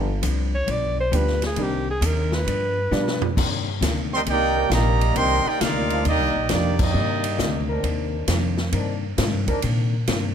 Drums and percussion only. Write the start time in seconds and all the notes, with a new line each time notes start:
0.23 hi-hat pedal, ride
0.68 ride
1.13 hi-hat pedal, ride
1.28 snare
1.42 snare, ride
1.56 ride
2.02 hi-hat pedal, ride
2.32 snare
2.48 ride
2.92 snare, hi-hat pedal
3.08 snare
3.22 floor tom
3.37 kick, crash
3.82 snare, hi-hat pedal, ride
4.26 ride
4.71 snare, hi-hat pedal, ride
5.01 ride
5.16 ride
5.61 snare, hi-hat pedal, ride
5.90 ride
6.05 ride
6.49 snare, hi-hat pedal, ride
6.79 kick, crash
7.24 ride
7.39 snare, hi-hat pedal
7.84 ride
8.28 snare, hi-hat pedal, ride
8.57 snare
8.72 ride
9.18 snare, hi-hat pedal, ride
9.48 kick, ride
9.62 ride
10.07 snare, hi-hat pedal, ride